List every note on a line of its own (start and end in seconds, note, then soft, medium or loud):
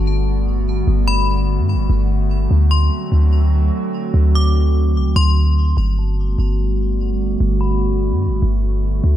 0.00 0.83 G1 loud
0.00 2.47 D3 medium
0.00 2.47 G3 medium
0.00 5.73 A3 medium
0.00 2.47 B3 medium
0.00 2.47 F#4 medium
0.87 1.60 G1 loud
1.08 1.27 B5 medium
1.59 1.76 G2 loud
1.74 1.89 G1 loud
1.89 2.48 G1 loud
2.51 2.90 D2 loud
2.51 5.74 D3 medium
2.51 5.74 F#3 medium
2.51 5.74 C4 medium
2.51 5.74 F#4 medium
2.71 2.90 C6 medium
3.12 3.71 D2 loud
4.14 4.97 D2 loud
4.35 4.54 D6 medium
4.96 5.07 C2 loud
5.06 5.15 D2 loud
5.16 5.75 D2 loud
5.16 5.74 C6 medium
5.77 6.36 G1 loud
5.77 9.00 D3 medium
5.77 9.00 G3 medium
5.77 9.17 A3 medium
5.77 9.00 B3 medium
5.77 9.00 F#4 medium
5.99 6.17 A5 medium
6.38 7.36 G1 medium
7.40 8.13 G1 loud
7.61 7.80 B5 medium
8.12 8.29 G2 medium
8.27 8.42 G1 loud
8.42 9.01 G1 loud
9.04 9.17 D2 loud
9.04 9.17 D3 medium
9.04 9.17 F#3 medium
9.04 9.17 C4 medium
9.04 9.17 F#4 medium